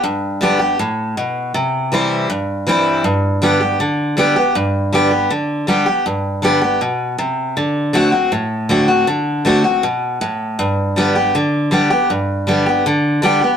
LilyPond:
\new Staff \with { instrumentName = "Steel-string acoustic guitar" } { \time 4/4 \key g \major \tempo 4 = 159 << { r4 <d g b g'>8 <b g'>8 r2 | r4 <e g c' e'>4 r4 <e g c' e'>4 | r4 <d g b g'>8 <b g'>8 r4 <d g b g'>8 <b g'>8 | r4 <d g b g'>8 <b g'>8 r4 <d g b g'>8 <b g'>8 |
r4 <d g b g'>8 <b g'>8 r2 | r4 <d a c' fis'>8 <c' fis'>8 r4 <d a c' fis'>8 <c' fis'>8 | r4 <d a c' fis'>8 <c' fis'>8 r2 | r4 <d g b g'>8 <b g'>8 r4 <d g b g'>8 <b g'>8 |
r4 <d g b g'>8 <b g'>8 r4 <d g b g'>8 <b g'>8 | } \\ { g,2 a,4 b,4 | c2 g,2 | g,2 d2 | g,2 d2 |
g,2 b,4 c4 | d2 a,2 | d2 b,4 a,4 | g,2 d2 |
g,2 d2 | } >> }